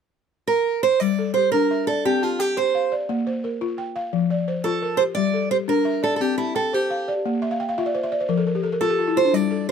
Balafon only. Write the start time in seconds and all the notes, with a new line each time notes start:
1.01 G3
1.19 A4
1.37 G4
1.54 D4
1.71 E5
1.88 D5
2.06 C4
2.23 A5
2.39 G5
2.57 C5
2.75 F5
2.92 D5
3.09 A#3
3.27 C5
3.44 A#4
3.61 F4
3.78 G5
3.96 F5
4.13 F3
4.30 D5
4.48 C5
4.65 F4
4.82 A#4
5.00 G4
5.17 G3
5.34 A4
5.51 G4
5.68 D4
5.85 E5
6.03 D5
6.21 C4
6.38 A5
6.55 G5
6.73 C5
6.90 F5
7.08 D5
7.26 A#3
7.42 E5
7.51 F5
7.60 G5
7.69 F5
7.78 F4 E5
7.86 D5
7.95 C5
8.03 E5
8.12 D5
8.21 C5
8.29 F3 A#4
8.38 A4
8.47 A#4
8.55 G4
8.63 A4
8.72 A#4
8.81 F4 A4
8.90 G4
8.99 F4
9.07 E4
9.16 F4
9.25 D4
9.33 G3
9.51 A4
9.68 G4